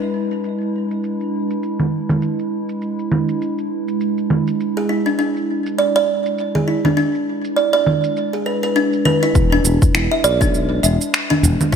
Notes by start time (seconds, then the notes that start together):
Already playing: G#3 D4 E4 B4
0.02 shaker
0.31 shaker
0.44 shaker
0.61 shaker
0.91 shaker
1.04 shaker
1.21 shaker
1.50 shaker
1.63 shaker
1.80 low conga, shaker
2.09 low conga, shaker
2.22 shaker
2.39 shaker
2.69 shaker
2.82 shaker
2.99 shaker
3.12 low conga
3.29 shaker
3.42 shaker
3.58 shaker
3.88 shaker
4.01 shaker
4.18 shaker
4.30 low conga
4.47 shaker
4.60 shaker
4.77 G#4, shaker
4.89 E4
5.06 D4, shaker
5.19 D4, shaker
5.37 shaker
5.66 shaker
5.79 D5, shaker
5.96 D5, shaker
6.26 shaker
6.38 shaker
6.55 G#4, low conga, shaker
6.68 E4
6.85 D4, low conga, shaker
6.97 D4, shaker
7.15 shaker
7.44 shaker
7.56 D5, shaker
7.73 D5, shaker
7.87 low conga
8.04 shaker
8.16 shaker
8.33 G#4, shaker
8.46 B4
8.63 B4, shaker
8.76 D4, shaker
8.93 shaker
9.05 B4, low conga
9.22 E4, shaker
9.35 E1 G#3, kick, shaker
9.52 D4
9.65 E1, shaker
9.78 E4, kick, udu, shaker
9.95 E1 E4, finger snap, shaker
10.12 E5
10.24 B1 D5, shaker
10.41 D4, kick, shaker
10.54 shaker
10.83 E1 B4 E5, shaker
11.01 shaker
11.14 finger snap, shaker
11.30 D4, low conga
11.43 E1, udu, shaker
11.61 low conga, shaker
11.72 E4